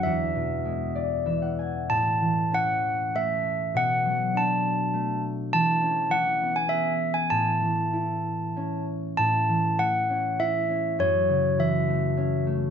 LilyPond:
<<
  \new Staff \with { instrumentName = "Handbells" } { \time 3/4 \key a \major \tempo 4 = 99 e''2 r4 | a''4 fis''4 e''4 | fis''4 a''4. r8 | a''4 fis''8. gis''16 e''8. gis''16 |
a''2~ a''8 r8 | a''4 fis''4 e''4 | cis''4 e''4. r8 | }
  \new Staff \with { instrumentName = "Harp" } { \time 3/4 \key a \major r4. d''8 e''16 fis''16 gis''8 | r2. | r2. | r2. |
r2. | r2. | r2. | }
  \new Staff \with { instrumentName = "Harp" } { \clef bass \time 3/4 \key a \major e,8 b,8 gis4 e4 | a,8 e8 cis'4 a4 | b,8 fis8 d'4 a4 | e8 cis'8 e8 b8 gis'4 |
a,8 e8 e'4 cis'4 | a,8 e8 a8 cis'8 e'8 cis'8 | fis,8 cis8 e8 a8 cis'8 a8 | }
>>